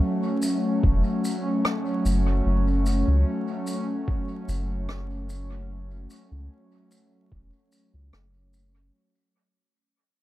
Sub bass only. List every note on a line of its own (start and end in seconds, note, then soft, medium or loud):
0.84 1.02 E1 medium
2.05 2.41 F#1 medium
2.46 3.03 F#1 medium
3.07 3.24 C#2 medium
4.48 6.07 F#1 medium
6.31 6.48 C#2 medium
7.32 7.51 E1 medium
7.94 8.11 C#2 medium
8.13 8.90 F#1 medium